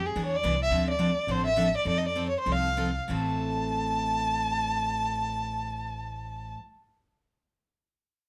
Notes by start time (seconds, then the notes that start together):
Already playing: F2
0.06 G#4
0.16 E2 E3 B3 D4 G#4
0.25 C#5
0.36 D5
0.43 C2 E3 B3 D4 G#4
0.62 E5
0.70 D2 D3 F3 C4 D4 A4
0.91 D5
0.99 D3 F3 C4 D4 A4
1.27 A1 D3 F3 C4 D4 A4 C5
1.47 E5
1.56 D3 F3 C4 D4 A4
1.77 D5
1.85 F2 F3 C4 D#4 A4 D5
1.98 D#5
2.09 D5
2.15 F3 C4 D#4 A4
2.29 C#5
2.40 C5
2.46 C2 F3 C4 D#4 A4
2.52 F5
2.77 F3 C4 D#4 A4
3.08 A1 A2 E3 A3 C4 E4 A4
3.13 A5